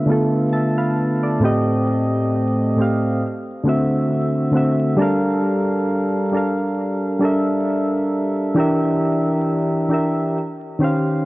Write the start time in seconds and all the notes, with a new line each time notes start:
Already playing: D3 A3 B3 F4 E5
0.06 D3 A3 B3
0.10 F4 A4
0.53 E5 A5
0.78 B4 F5
1.23 A4 D5
1.40 A2 A3 C4
1.44 G4 D#5
2.76 A2 A3 C4
2.80 G4 F5
3.63 D3 A3 C4 F#4
3.69 E5
4.51 D3 A3 C4
4.55 F#4 E5
4.97 G3 D4 A4 A#4
5.02 F5
6.32 G3 D4 A4 A#4
6.37 F5
7.19 G3 D4 A4
7.24 A#4 E5
8.55 E3 D4 G4 A#4
8.60 E5
9.88 E3 D4 G4
9.93 A#4 E5
10.79 D#3 C#4 G4 C5
10.84 F5